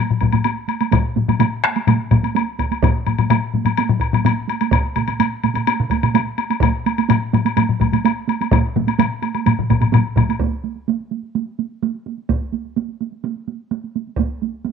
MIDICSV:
0, 0, Header, 1, 3, 480
1, 0, Start_track
1, 0, Tempo, 473186
1, 943, Time_signature, 4, 2, 24, 8
1, 14933, End_track
2, 0, Start_track
2, 0, Title_t, "Taiko and cinematic ensemble drums"
2, 107, Note_on_c, 9, 45, 69
2, 208, Note_off_c, 9, 45, 0
2, 214, Note_on_c, 9, 48, 47
2, 215, Note_on_c, 9, 41, 66
2, 233, Note_on_c, 9, 45, 69
2, 315, Note_off_c, 9, 48, 0
2, 316, Note_off_c, 9, 41, 0
2, 334, Note_off_c, 9, 45, 0
2, 336, Note_on_c, 9, 48, 51
2, 341, Note_on_c, 9, 45, 70
2, 437, Note_off_c, 9, 48, 0
2, 443, Note_off_c, 9, 45, 0
2, 456, Note_on_c, 9, 48, 67
2, 557, Note_off_c, 9, 48, 0
2, 688, Note_on_c, 9, 48, 45
2, 789, Note_off_c, 9, 48, 0
2, 818, Note_on_c, 9, 48, 53
2, 919, Note_off_c, 9, 48, 0
2, 928, Note_on_c, 9, 48, 70
2, 943, Note_on_c, 9, 41, 91
2, 943, Note_on_c, 9, 47, 92
2, 944, Note_on_c, 9, 45, 93
2, 1029, Note_off_c, 9, 48, 0
2, 1044, Note_off_c, 9, 47, 0
2, 1045, Note_off_c, 9, 41, 0
2, 1046, Note_off_c, 9, 45, 0
2, 1177, Note_on_c, 9, 48, 53
2, 1184, Note_on_c, 9, 45, 60
2, 1187, Note_on_c, 9, 47, 72
2, 1279, Note_off_c, 9, 48, 0
2, 1285, Note_off_c, 9, 45, 0
2, 1289, Note_off_c, 9, 47, 0
2, 1302, Note_on_c, 9, 45, 79
2, 1304, Note_on_c, 9, 47, 67
2, 1305, Note_on_c, 9, 48, 51
2, 1404, Note_off_c, 9, 45, 0
2, 1405, Note_off_c, 9, 47, 0
2, 1407, Note_off_c, 9, 48, 0
2, 1415, Note_on_c, 9, 45, 90
2, 1421, Note_on_c, 9, 47, 90
2, 1427, Note_on_c, 9, 48, 68
2, 1517, Note_off_c, 9, 45, 0
2, 1522, Note_off_c, 9, 47, 0
2, 1529, Note_off_c, 9, 48, 0
2, 1660, Note_on_c, 9, 37, 67
2, 1667, Note_off_c, 9, 37, 0
2, 1667, Note_on_c, 9, 37, 72
2, 1669, Note_on_c, 9, 48, 55
2, 1768, Note_off_c, 9, 37, 0
2, 1770, Note_off_c, 9, 48, 0
2, 1790, Note_on_c, 9, 48, 54
2, 1892, Note_off_c, 9, 48, 0
2, 1899, Note_on_c, 9, 45, 92
2, 1910, Note_on_c, 9, 47, 89
2, 1911, Note_on_c, 9, 48, 76
2, 2001, Note_off_c, 9, 45, 0
2, 2011, Note_off_c, 9, 47, 0
2, 2013, Note_off_c, 9, 48, 0
2, 2139, Note_on_c, 9, 41, 68
2, 2142, Note_on_c, 9, 45, 94
2, 2143, Note_on_c, 9, 47, 90
2, 2146, Note_on_c, 9, 48, 51
2, 2241, Note_off_c, 9, 41, 0
2, 2244, Note_off_c, 9, 45, 0
2, 2245, Note_off_c, 9, 47, 0
2, 2247, Note_off_c, 9, 48, 0
2, 2265, Note_on_c, 9, 48, 54
2, 2367, Note_off_c, 9, 48, 0
2, 2383, Note_on_c, 9, 48, 75
2, 2485, Note_off_c, 9, 48, 0
2, 2624, Note_on_c, 9, 48, 48
2, 2629, Note_on_c, 9, 41, 76
2, 2726, Note_off_c, 9, 48, 0
2, 2731, Note_off_c, 9, 41, 0
2, 2753, Note_on_c, 9, 48, 52
2, 2855, Note_off_c, 9, 48, 0
2, 2866, Note_on_c, 9, 41, 112
2, 2872, Note_on_c, 9, 45, 89
2, 2877, Note_on_c, 9, 48, 68
2, 2968, Note_off_c, 9, 41, 0
2, 2974, Note_off_c, 9, 45, 0
2, 2979, Note_off_c, 9, 48, 0
2, 3109, Note_on_c, 9, 48, 53
2, 3114, Note_on_c, 9, 45, 62
2, 3210, Note_off_c, 9, 48, 0
2, 3215, Note_off_c, 9, 45, 0
2, 3232, Note_on_c, 9, 45, 75
2, 3233, Note_on_c, 9, 48, 53
2, 3333, Note_off_c, 9, 45, 0
2, 3334, Note_off_c, 9, 48, 0
2, 3348, Note_on_c, 9, 45, 105
2, 3357, Note_on_c, 9, 48, 68
2, 3449, Note_off_c, 9, 45, 0
2, 3458, Note_off_c, 9, 48, 0
2, 3587, Note_on_c, 9, 45, 57
2, 3599, Note_on_c, 9, 48, 52
2, 3689, Note_off_c, 9, 45, 0
2, 3700, Note_off_c, 9, 48, 0
2, 3701, Note_on_c, 9, 45, 62
2, 3715, Note_on_c, 9, 48, 51
2, 3803, Note_off_c, 9, 45, 0
2, 3816, Note_off_c, 9, 48, 0
2, 3836, Note_on_c, 9, 48, 73
2, 3938, Note_off_c, 9, 48, 0
2, 3949, Note_on_c, 9, 45, 89
2, 4050, Note_off_c, 9, 45, 0
2, 4054, Note_on_c, 9, 41, 75
2, 4155, Note_off_c, 9, 41, 0
2, 4191, Note_on_c, 9, 45, 89
2, 4198, Note_on_c, 9, 48, 53
2, 4292, Note_off_c, 9, 45, 0
2, 4300, Note_off_c, 9, 48, 0
2, 4309, Note_on_c, 9, 45, 92
2, 4312, Note_on_c, 9, 48, 75
2, 4410, Note_off_c, 9, 45, 0
2, 4413, Note_off_c, 9, 48, 0
2, 4551, Note_on_c, 9, 48, 54
2, 4653, Note_off_c, 9, 48, 0
2, 4677, Note_on_c, 9, 48, 53
2, 4778, Note_off_c, 9, 48, 0
2, 4782, Note_on_c, 9, 41, 102
2, 4789, Note_on_c, 9, 47, 93
2, 4790, Note_on_c, 9, 48, 66
2, 4883, Note_off_c, 9, 41, 0
2, 4891, Note_off_c, 9, 47, 0
2, 4892, Note_off_c, 9, 48, 0
2, 5030, Note_on_c, 9, 48, 56
2, 5035, Note_on_c, 9, 47, 71
2, 5131, Note_off_c, 9, 48, 0
2, 5137, Note_off_c, 9, 47, 0
2, 5151, Note_on_c, 9, 48, 50
2, 5153, Note_on_c, 9, 47, 65
2, 5252, Note_off_c, 9, 48, 0
2, 5254, Note_off_c, 9, 47, 0
2, 5271, Note_on_c, 9, 47, 81
2, 5271, Note_on_c, 9, 48, 68
2, 5373, Note_off_c, 9, 47, 0
2, 5373, Note_off_c, 9, 48, 0
2, 5514, Note_on_c, 9, 47, 66
2, 5515, Note_on_c, 9, 48, 57
2, 5615, Note_off_c, 9, 47, 0
2, 5617, Note_off_c, 9, 48, 0
2, 5631, Note_on_c, 9, 48, 55
2, 5637, Note_on_c, 9, 47, 69
2, 5732, Note_off_c, 9, 48, 0
2, 5739, Note_off_c, 9, 47, 0
2, 5756, Note_on_c, 9, 48, 79
2, 5857, Note_off_c, 9, 48, 0
2, 5881, Note_on_c, 9, 47, 102
2, 5983, Note_off_c, 9, 47, 0
2, 5983, Note_on_c, 9, 41, 71
2, 6000, Note_on_c, 9, 48, 57
2, 6084, Note_off_c, 9, 41, 0
2, 6102, Note_off_c, 9, 48, 0
2, 6117, Note_on_c, 9, 48, 57
2, 6119, Note_on_c, 9, 47, 97
2, 6218, Note_off_c, 9, 48, 0
2, 6221, Note_off_c, 9, 47, 0
2, 6238, Note_on_c, 9, 47, 99
2, 6239, Note_on_c, 9, 48, 79
2, 6340, Note_off_c, 9, 47, 0
2, 6340, Note_off_c, 9, 48, 0
2, 6471, Note_on_c, 9, 48, 50
2, 6573, Note_off_c, 9, 48, 0
2, 6597, Note_on_c, 9, 48, 52
2, 6697, Note_on_c, 9, 41, 100
2, 6698, Note_off_c, 9, 48, 0
2, 6714, Note_on_c, 9, 48, 75
2, 6720, Note_on_c, 9, 45, 98
2, 6799, Note_off_c, 9, 41, 0
2, 6815, Note_off_c, 9, 48, 0
2, 6822, Note_off_c, 9, 45, 0
2, 6961, Note_on_c, 9, 48, 55
2, 7062, Note_off_c, 9, 48, 0
2, 7082, Note_on_c, 9, 48, 59
2, 7184, Note_off_c, 9, 48, 0
2, 7192, Note_on_c, 9, 48, 79
2, 7202, Note_on_c, 9, 45, 95
2, 7294, Note_off_c, 9, 48, 0
2, 7304, Note_off_c, 9, 45, 0
2, 7438, Note_on_c, 9, 48, 59
2, 7441, Note_on_c, 9, 45, 85
2, 7540, Note_off_c, 9, 48, 0
2, 7542, Note_off_c, 9, 45, 0
2, 7564, Note_on_c, 9, 48, 61
2, 7666, Note_off_c, 9, 48, 0
2, 7676, Note_on_c, 9, 48, 76
2, 7682, Note_on_c, 9, 45, 69
2, 7777, Note_off_c, 9, 48, 0
2, 7783, Note_off_c, 9, 45, 0
2, 7801, Note_on_c, 9, 45, 68
2, 7903, Note_off_c, 9, 45, 0
2, 7910, Note_on_c, 9, 41, 71
2, 7919, Note_on_c, 9, 45, 73
2, 7920, Note_on_c, 9, 48, 57
2, 8011, Note_off_c, 9, 41, 0
2, 8021, Note_off_c, 9, 45, 0
2, 8022, Note_off_c, 9, 48, 0
2, 8039, Note_on_c, 9, 45, 63
2, 8045, Note_on_c, 9, 48, 62
2, 8140, Note_off_c, 9, 45, 0
2, 8146, Note_off_c, 9, 48, 0
2, 8162, Note_on_c, 9, 48, 86
2, 8264, Note_off_c, 9, 48, 0
2, 8403, Note_on_c, 9, 48, 62
2, 8504, Note_off_c, 9, 48, 0
2, 8529, Note_on_c, 9, 48, 55
2, 8630, Note_off_c, 9, 48, 0
2, 8637, Note_on_c, 9, 41, 109
2, 8638, Note_on_c, 9, 45, 92
2, 8643, Note_on_c, 9, 47, 84
2, 8646, Note_on_c, 9, 48, 78
2, 8739, Note_off_c, 9, 41, 0
2, 8740, Note_off_c, 9, 45, 0
2, 8745, Note_off_c, 9, 47, 0
2, 8748, Note_off_c, 9, 48, 0
2, 8885, Note_on_c, 9, 47, 99
2, 8886, Note_on_c, 9, 45, 86
2, 8889, Note_on_c, 9, 48, 58
2, 8986, Note_off_c, 9, 47, 0
2, 8988, Note_off_c, 9, 45, 0
2, 8991, Note_off_c, 9, 48, 0
2, 9001, Note_on_c, 9, 48, 61
2, 9103, Note_off_c, 9, 48, 0
2, 9119, Note_on_c, 9, 45, 97
2, 9120, Note_on_c, 9, 48, 77
2, 9123, Note_on_c, 9, 47, 91
2, 9220, Note_off_c, 9, 45, 0
2, 9221, Note_off_c, 9, 48, 0
2, 9225, Note_off_c, 9, 47, 0
2, 9358, Note_on_c, 9, 48, 61
2, 9459, Note_off_c, 9, 48, 0
2, 9481, Note_on_c, 9, 48, 59
2, 9583, Note_off_c, 9, 48, 0
2, 9597, Note_on_c, 9, 48, 76
2, 9605, Note_on_c, 9, 45, 62
2, 9606, Note_on_c, 9, 47, 67
2, 9698, Note_off_c, 9, 48, 0
2, 9707, Note_off_c, 9, 45, 0
2, 9707, Note_off_c, 9, 47, 0
2, 9724, Note_on_c, 9, 47, 71
2, 9727, Note_on_c, 9, 45, 67
2, 9826, Note_off_c, 9, 47, 0
2, 9829, Note_off_c, 9, 45, 0
2, 9837, Note_on_c, 9, 41, 74
2, 9837, Note_on_c, 9, 48, 52
2, 9839, Note_on_c, 9, 47, 65
2, 9846, Note_on_c, 9, 45, 70
2, 9938, Note_off_c, 9, 48, 0
2, 9939, Note_off_c, 9, 41, 0
2, 9940, Note_off_c, 9, 47, 0
2, 9947, Note_off_c, 9, 45, 0
2, 9949, Note_on_c, 9, 48, 54
2, 9959, Note_on_c, 9, 47, 65
2, 9968, Note_on_c, 9, 45, 63
2, 10051, Note_off_c, 9, 48, 0
2, 10061, Note_off_c, 9, 47, 0
2, 10065, Note_on_c, 9, 48, 79
2, 10070, Note_off_c, 9, 45, 0
2, 10073, Note_on_c, 9, 47, 104
2, 10090, Note_on_c, 9, 45, 86
2, 10166, Note_off_c, 9, 48, 0
2, 10175, Note_off_c, 9, 47, 0
2, 10191, Note_off_c, 9, 45, 0
2, 10305, Note_on_c, 9, 41, 81
2, 10308, Note_on_c, 9, 48, 48
2, 10309, Note_on_c, 9, 47, 99
2, 10319, Note_on_c, 9, 45, 90
2, 10406, Note_off_c, 9, 41, 0
2, 10409, Note_off_c, 9, 48, 0
2, 10411, Note_off_c, 9, 47, 0
2, 10420, Note_off_c, 9, 45, 0
2, 10439, Note_on_c, 9, 48, 49
2, 10541, Note_off_c, 9, 48, 0
2, 10545, Note_on_c, 9, 41, 79
2, 10561, Note_on_c, 9, 48, 55
2, 10647, Note_off_c, 9, 41, 0
2, 10662, Note_off_c, 9, 48, 0
2, 10678, Note_on_c, 9, 48, 18
2, 10779, Note_off_c, 9, 48, 0
2, 10791, Note_on_c, 9, 48, 41
2, 10892, Note_off_c, 9, 48, 0
2, 10912, Note_on_c, 9, 48, 16
2, 11014, Note_off_c, 9, 48, 0
2, 11036, Note_on_c, 9, 48, 53
2, 11137, Note_off_c, 9, 48, 0
2, 11161, Note_on_c, 9, 48, 16
2, 11263, Note_off_c, 9, 48, 0
2, 11271, Note_on_c, 9, 48, 42
2, 11373, Note_off_c, 9, 48, 0
2, 11391, Note_on_c, 9, 48, 17
2, 11492, Note_off_c, 9, 48, 0
2, 11514, Note_on_c, 9, 48, 54
2, 11616, Note_off_c, 9, 48, 0
2, 11630, Note_on_c, 9, 48, 16
2, 11731, Note_off_c, 9, 48, 0
2, 11755, Note_on_c, 9, 48, 39
2, 11856, Note_off_c, 9, 48, 0
2, 11996, Note_on_c, 9, 48, 60
2, 12097, Note_off_c, 9, 48, 0
2, 12117, Note_on_c, 9, 48, 16
2, 12218, Note_off_c, 9, 48, 0
2, 12234, Note_on_c, 9, 48, 41
2, 12335, Note_off_c, 9, 48, 0
2, 12355, Note_on_c, 9, 48, 16
2, 12456, Note_off_c, 9, 48, 0
2, 12467, Note_on_c, 9, 48, 51
2, 12468, Note_on_c, 9, 41, 81
2, 12569, Note_off_c, 9, 41, 0
2, 12569, Note_off_c, 9, 48, 0
2, 12592, Note_on_c, 9, 48, 16
2, 12693, Note_off_c, 9, 48, 0
2, 12705, Note_on_c, 9, 48, 42
2, 12806, Note_off_c, 9, 48, 0
2, 12832, Note_on_c, 9, 48, 16
2, 12934, Note_off_c, 9, 48, 0
2, 12948, Note_on_c, 9, 48, 53
2, 13050, Note_off_c, 9, 48, 0
2, 13071, Note_on_c, 9, 48, 16
2, 13172, Note_off_c, 9, 48, 0
2, 13193, Note_on_c, 9, 48, 42
2, 13295, Note_off_c, 9, 48, 0
2, 13313, Note_on_c, 9, 48, 18
2, 13415, Note_off_c, 9, 48, 0
2, 13428, Note_on_c, 9, 48, 58
2, 13530, Note_off_c, 9, 48, 0
2, 13549, Note_on_c, 9, 48, 17
2, 13650, Note_off_c, 9, 48, 0
2, 13671, Note_on_c, 9, 48, 40
2, 13772, Note_off_c, 9, 48, 0
2, 13909, Note_on_c, 9, 48, 54
2, 14010, Note_off_c, 9, 48, 0
2, 14037, Note_on_c, 9, 48, 18
2, 14139, Note_off_c, 9, 48, 0
2, 14157, Note_on_c, 9, 48, 46
2, 14258, Note_off_c, 9, 48, 0
2, 14275, Note_on_c, 9, 48, 16
2, 14368, Note_on_c, 9, 41, 78
2, 14376, Note_off_c, 9, 48, 0
2, 14395, Note_on_c, 9, 48, 52
2, 14469, Note_off_c, 9, 41, 0
2, 14497, Note_off_c, 9, 48, 0
2, 14627, Note_on_c, 9, 48, 42
2, 14728, Note_off_c, 9, 48, 0
2, 14747, Note_on_c, 9, 48, 16
2, 14849, Note_off_c, 9, 48, 0
2, 14856, Note_on_c, 9, 48, 54
2, 14933, Note_off_c, 9, 48, 0
2, 14933, End_track
3, 0, Start_track
3, 0, Title_t, "Drums"
3, 209, Note_on_c, 9, 76, 35
3, 310, Note_off_c, 9, 76, 0
3, 329, Note_on_c, 9, 76, 40
3, 431, Note_off_c, 9, 76, 0
3, 450, Note_on_c, 9, 76, 46
3, 551, Note_off_c, 9, 76, 0
3, 696, Note_on_c, 9, 76, 42
3, 798, Note_off_c, 9, 76, 0
3, 817, Note_on_c, 9, 76, 38
3, 919, Note_off_c, 9, 76, 0
3, 937, Note_on_c, 9, 76, 45
3, 1038, Note_off_c, 9, 76, 0
3, 1309, Note_on_c, 9, 76, 36
3, 1410, Note_off_c, 9, 76, 0
3, 1420, Note_on_c, 9, 76, 50
3, 1521, Note_off_c, 9, 76, 0
3, 1667, Note_on_c, 9, 76, 35
3, 1768, Note_off_c, 9, 76, 0
3, 1784, Note_on_c, 9, 76, 35
3, 1886, Note_off_c, 9, 76, 0
3, 1904, Note_on_c, 9, 76, 45
3, 2005, Note_off_c, 9, 76, 0
3, 2142, Note_on_c, 9, 76, 35
3, 2243, Note_off_c, 9, 76, 0
3, 2274, Note_on_c, 9, 76, 37
3, 2375, Note_off_c, 9, 76, 0
3, 2398, Note_on_c, 9, 76, 43
3, 2499, Note_off_c, 9, 76, 0
3, 2631, Note_on_c, 9, 76, 38
3, 2732, Note_off_c, 9, 76, 0
3, 2757, Note_on_c, 9, 76, 35
3, 2859, Note_off_c, 9, 76, 0
3, 2881, Note_on_c, 9, 76, 44
3, 2982, Note_off_c, 9, 76, 0
3, 3109, Note_on_c, 9, 76, 40
3, 3210, Note_off_c, 9, 76, 0
3, 3231, Note_on_c, 9, 76, 39
3, 3332, Note_off_c, 9, 76, 0
3, 3351, Note_on_c, 9, 76, 53
3, 3453, Note_off_c, 9, 76, 0
3, 3709, Note_on_c, 9, 76, 42
3, 3810, Note_off_c, 9, 76, 0
3, 3829, Note_on_c, 9, 76, 49
3, 3930, Note_off_c, 9, 76, 0
3, 4068, Note_on_c, 9, 76, 40
3, 4169, Note_off_c, 9, 76, 0
3, 4203, Note_on_c, 9, 76, 43
3, 4305, Note_off_c, 9, 76, 0
3, 4322, Note_on_c, 9, 76, 52
3, 4423, Note_off_c, 9, 76, 0
3, 4559, Note_on_c, 9, 76, 47
3, 4661, Note_off_c, 9, 76, 0
3, 4674, Note_on_c, 9, 76, 43
3, 4776, Note_off_c, 9, 76, 0
3, 4796, Note_on_c, 9, 76, 53
3, 4898, Note_off_c, 9, 76, 0
3, 5029, Note_on_c, 9, 76, 45
3, 5131, Note_off_c, 9, 76, 0
3, 5149, Note_on_c, 9, 76, 45
3, 5250, Note_off_c, 9, 76, 0
3, 5274, Note_on_c, 9, 76, 56
3, 5375, Note_off_c, 9, 76, 0
3, 5513, Note_on_c, 9, 76, 42
3, 5615, Note_off_c, 9, 76, 0
3, 5634, Note_on_c, 9, 76, 42
3, 5736, Note_off_c, 9, 76, 0
3, 5754, Note_on_c, 9, 76, 61
3, 5856, Note_off_c, 9, 76, 0
3, 5993, Note_on_c, 9, 76, 45
3, 6095, Note_off_c, 9, 76, 0
3, 6119, Note_on_c, 9, 76, 43
3, 6220, Note_off_c, 9, 76, 0
3, 6238, Note_on_c, 9, 76, 49
3, 6339, Note_off_c, 9, 76, 0
3, 6472, Note_on_c, 9, 76, 46
3, 6573, Note_off_c, 9, 76, 0
3, 6599, Note_on_c, 9, 76, 42
3, 6700, Note_off_c, 9, 76, 0
3, 6722, Note_on_c, 9, 76, 52
3, 6824, Note_off_c, 9, 76, 0
3, 6963, Note_on_c, 9, 76, 43
3, 7064, Note_off_c, 9, 76, 0
3, 7083, Note_on_c, 9, 76, 45
3, 7184, Note_off_c, 9, 76, 0
3, 7200, Note_on_c, 9, 76, 54
3, 7302, Note_off_c, 9, 76, 0
3, 7450, Note_on_c, 9, 76, 40
3, 7551, Note_off_c, 9, 76, 0
3, 7567, Note_on_c, 9, 76, 39
3, 7668, Note_off_c, 9, 76, 0
3, 7679, Note_on_c, 9, 76, 51
3, 7780, Note_off_c, 9, 76, 0
3, 7925, Note_on_c, 9, 76, 36
3, 8026, Note_off_c, 9, 76, 0
3, 8048, Note_on_c, 9, 76, 39
3, 8149, Note_off_c, 9, 76, 0
3, 8170, Note_on_c, 9, 76, 46
3, 8272, Note_off_c, 9, 76, 0
3, 8411, Note_on_c, 9, 76, 41
3, 8512, Note_off_c, 9, 76, 0
3, 8536, Note_on_c, 9, 76, 38
3, 8637, Note_off_c, 9, 76, 0
3, 8652, Note_on_c, 9, 76, 44
3, 8753, Note_off_c, 9, 76, 0
3, 9009, Note_on_c, 9, 76, 38
3, 9110, Note_off_c, 9, 76, 0
3, 9125, Note_on_c, 9, 76, 52
3, 9226, Note_off_c, 9, 76, 0
3, 9358, Note_on_c, 9, 76, 36
3, 9460, Note_off_c, 9, 76, 0
3, 9480, Note_on_c, 9, 76, 38
3, 9582, Note_off_c, 9, 76, 0
3, 9600, Note_on_c, 9, 76, 44
3, 9702, Note_off_c, 9, 76, 0
3, 9842, Note_on_c, 9, 76, 35
3, 9944, Note_off_c, 9, 76, 0
3, 9957, Note_on_c, 9, 76, 35
3, 10059, Note_off_c, 9, 76, 0
3, 10083, Note_on_c, 9, 76, 43
3, 10184, Note_off_c, 9, 76, 0
3, 10322, Note_on_c, 9, 76, 40
3, 10424, Note_off_c, 9, 76, 0
3, 10447, Note_on_c, 9, 76, 35
3, 10549, Note_off_c, 9, 76, 0
3, 14933, End_track
0, 0, End_of_file